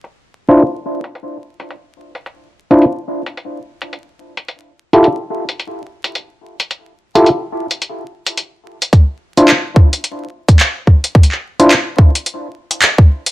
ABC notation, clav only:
X:1
M:4/4
L:1/16
Q:"Swing 16ths" 1/4=108
K:Dm
V:1 name="Clav"
z3 [DEFc] z12 | z3 [DEFc] z12 | z3 [EFGA] z12 | z3 [EFGA] z12 |
z3 [DEFc] z12 | z3 [DEFc] z12 |]